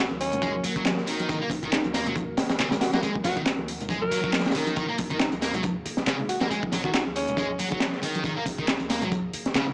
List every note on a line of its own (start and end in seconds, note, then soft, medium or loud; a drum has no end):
0.00 0.12 A#1 medium
0.00 9.74 D#3 medium
0.00 9.74 F#3 medium
0.00 9.74 A#3 medium
0.00 9.74 F#4 medium
0.00 4.75 A#4 medium
0.11 0.60 D#2 loud
0.11 high conga medium
0.20 0.64 C#4 loud
0.20 closed hi-hat medium
0.20 open hi-hat medium
0.32 closed hi-hat soft
0.32 low conga medium
0.42 0.50 G#3 loud
0.42 kick loud
0.42 closed hi-hat medium
0.42 closed hi-hat soft
0.42 high conga medium
0.64 0.73 D#1 loud
0.64 0.72 F#3 loud
0.64 closed hi-hat medium
0.64 open hi-hat medium
0.76 1.25 D#1 loud
0.76 0.83 F#3 medium
0.76 kick medium
0.76 closed hi-hat soft
0.76 high conga medium
0.85 snare loud
0.85 clap loud
0.85 closed hi-hat medium
0.85 closed hi-hat soft
0.98 snare soft
1.07 1.28 D#3 medium
1.07 closed hi-hat medium
1.07 open hi-hat medium
1.19 closed hi-hat soft
1.19 high conga medium
1.29 1.38 D#1 loud
1.29 1.37 D#3 loud
1.29 kick loud
1.29 closed hi-hat medium
1.29 closed hi-hat soft
1.41 1.48 A#3 medium
1.50 1.86 A#1 medium
1.50 kick loud
1.50 closed hi-hat medium
1.50 open hi-hat medium
1.50 high conga loud
1.63 1.70 D#3 medium
1.63 kick loud
1.63 closed hi-hat soft
1.72 snare loud
1.72 clap loud
1.72 closed hi-hat medium
1.72 closed hi-hat soft
1.84 2.34 D#2 loud
1.84 closed hi-hat soft
1.84 high conga medium
1.94 2.06 A#3 loud
1.94 snare medium
1.94 closed hi-hat medium
1.94 open hi-hat medium
2.06 2.13 F#3 medium
2.06 closed hi-hat soft
2.06 low conga medium
2.15 kick loud
2.15 closed hi-hat medium
2.15 closed hi-hat soft
2.15 high conga medium
2.37 2.47 D#1 loud
2.37 snare loud
2.37 closed hi-hat medium
2.37 open hi-hat medium
2.49 2.99 D#1 loud
2.49 snare loud
2.49 closed hi-hat medium
2.49 closed hi-hat soft
2.49 high conga medium
2.59 2.68 C#3 loud
2.59 snare medium
2.59 clap loud
2.59 closed hi-hat medium
2.59 closed hi-hat soft
2.71 snare loud
2.71 closed hi-hat medium
2.71 low conga medium
2.81 2.89 F#4 medium
2.81 snare loud
2.81 closed hi-hat medium
2.81 open hi-hat medium
2.93 3.00 A#3 medium
2.93 2.99 F#4 medium
2.93 snare loud
2.93 closed hi-hat soft
2.93 closed hi-hat medium
2.93 high conga loud
3.03 3.12 D#1 loud
3.03 3.11 G#3 loud
3.03 closed hi-hat loud
3.03 closed hi-hat soft
3.15 kick medium
3.24 3.60 A#1 medium
3.24 3.33 F#3 loud
3.24 3.38 F#4 medium
3.24 snare soft
3.24 closed hi-hat medium
3.24 open hi-hat medium
3.24 high conga loud
3.37 3.41 D#3 medium
3.37 kick medium
3.37 closed hi-hat soft
3.46 snare loud
3.46 clap loud
3.46 closed hi-hat loud
3.46 closed hi-hat soft
3.59 4.08 D#2 loud
3.59 high conga medium
3.68 closed hi-hat medium
3.68 open hi-hat medium
3.80 closed hi-hat soft
3.80 low conga medium
3.89 3.98 G#3 loud
3.89 kick loud
3.89 closed hi-hat soft
3.89 closed hi-hat medium
3.89 high conga loud
4.02 4.46 A#4 loud
4.11 4.21 D#1 loud
4.11 4.20 F#3 loud
4.11 closed hi-hat medium
4.11 open hi-hat medium
4.24 4.73 D#1 loud
4.24 4.30 F#3 medium
4.24 kick medium
4.24 closed hi-hat soft
4.24 high conga medium
4.33 snare medium
4.33 clap loud
4.33 closed hi-hat soft
4.33 closed hi-hat medium
4.39 snare medium
4.39 closed hi-hat medium
4.46 snare medium
4.46 closed hi-hat medium
4.50 snare medium
4.50 closed hi-hat medium
4.55 4.75 D#3 medium
4.55 closed hi-hat medium
4.55 open hi-hat medium
4.67 closed hi-hat soft
4.67 high conga medium
4.76 4.86 D#1 loud
4.76 4.85 D#3 loud
4.76 9.74 G#4 loud
4.76 kick loud
4.76 closed hi-hat medium
4.76 closed hi-hat soft
4.89 4.95 A#3 medium
4.98 5.34 A#1 medium
4.98 kick loud
4.98 closed hi-hat medium
4.98 open hi-hat medium
4.98 high conga medium
5.11 5.17 D#3 medium
5.11 kick loud
5.11 closed hi-hat soft
5.20 snare loud
5.20 clap loud
5.20 closed hi-hat loud
5.20 closed hi-hat soft
5.32 5.81 D#2 loud
5.32 closed hi-hat soft
5.32 high conga medium
5.42 5.54 A#3 loud
5.42 snare medium
5.42 closed hi-hat medium
5.42 open hi-hat medium
5.54 5.61 F#3 medium
5.54 closed hi-hat soft
5.54 low conga medium
5.63 kick loud
5.63 closed hi-hat loud
5.63 closed hi-hat soft
5.63 high conga medium
5.86 5.95 D#1 loud
5.86 closed hi-hat medium
5.86 open hi-hat medium
5.97 6.47 D#1 loud
5.97 snare soft
5.97 closed hi-hat soft
5.97 high conga medium
6.07 6.15 C#3 loud
6.07 snare loud
6.07 clap loud
6.07 closed hi-hat medium
6.07 closed hi-hat soft
6.20 low conga medium
6.29 6.37 F#4 medium
6.29 closed hi-hat medium
6.29 open hi-hat medium
6.41 6.47 A#3 medium
6.41 6.47 F#4 medium
6.41 snare medium
6.41 closed hi-hat soft
6.41 high conga medium
6.50 6.60 D#1 loud
6.50 6.59 G#3 loud
6.50 closed hi-hat soft
6.50 closed hi-hat medium
6.63 kick loud
6.72 7.08 A#1 medium
6.72 6.81 F#3 loud
6.72 snare soft
6.72 closed hi-hat medium
6.72 open hi-hat medium
6.72 high conga medium
6.84 6.88 D#3 medium
6.84 6.91 F#4 medium
6.84 kick loud
6.94 7.02 F#4 medium
6.94 snare loud
6.94 clap loud
6.94 closed hi-hat loud
6.94 closed hi-hat soft
7.06 7.55 D#2 loud
7.06 high conga medium
7.16 7.59 C#4 medium
7.16 closed hi-hat medium
7.16 open hi-hat medium
7.27 closed hi-hat soft
7.27 low conga medium
7.37 7.46 G#3 loud
7.37 kick loud
7.37 closed hi-hat soft
7.37 closed hi-hat medium
7.37 high conga medium
7.59 7.68 D#1 loud
7.59 7.67 F#3 loud
7.59 closed hi-hat medium
7.59 open hi-hat medium
7.71 8.21 D#1 loud
7.71 7.78 F#3 medium
7.71 kick loud
7.71 closed hi-hat soft
7.71 high conga medium
7.80 snare loud
7.80 clap loud
7.80 closed hi-hat medium
7.80 closed hi-hat soft
7.93 snare soft
8.03 8.23 D#3 medium
8.03 closed hi-hat medium
8.03 open hi-hat medium
8.14 closed hi-hat soft
8.14 high conga medium
8.24 8.33 D#1 loud
8.24 8.33 D#3 loud
8.24 kick loud
8.24 closed hi-hat soft
8.24 closed hi-hat medium
8.37 8.43 A#3 medium
8.46 8.82 A#1 medium
8.46 kick medium
8.46 closed hi-hat medium
8.46 open hi-hat medium
8.46 high conga medium
8.58 8.65 D#3 medium
8.58 kick medium
8.68 snare loud
8.68 clap loud
8.68 closed hi-hat medium
8.68 closed hi-hat soft
8.80 9.29 D#2 loud
8.80 closed hi-hat soft
8.80 high conga medium
8.90 9.01 A#3 loud
8.90 snare medium
8.90 closed hi-hat medium
8.90 open hi-hat medium
9.02 9.08 F#3 medium
9.02 closed hi-hat soft
9.02 low conga loud
9.11 kick loud
9.11 closed hi-hat soft
9.11 closed hi-hat loud
9.11 high conga medium
9.33 9.42 D#1 loud
9.33 closed hi-hat medium
9.33 open hi-hat medium
9.46 9.74 D#1 loud
9.46 snare medium
9.46 closed hi-hat soft
9.46 high conga medium
9.55 9.63 C#3 loud
9.55 snare loud
9.55 clap loud
9.55 closed hi-hat medium
9.55 closed hi-hat soft
9.66 low conga medium